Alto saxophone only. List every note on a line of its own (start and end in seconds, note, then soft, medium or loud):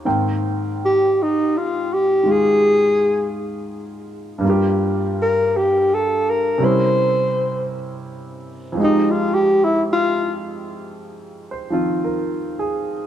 0.85 1.24 G4 medium
1.22 1.59 D#4 medium
1.58 1.95 F4 medium
1.93 2.32 G4 medium
2.31 3.37 G#4 medium
5.22 5.58 A#4 medium
5.57 5.96 G4 medium
5.94 6.32 A4 medium
6.30 6.66 A#4 medium
6.65 7.71 C5 medium
8.84 9.12 D#4 medium
9.11 9.36 F4 medium
9.34 9.65 G4 medium
9.64 9.83 E4 medium
9.93 10.36 F4 medium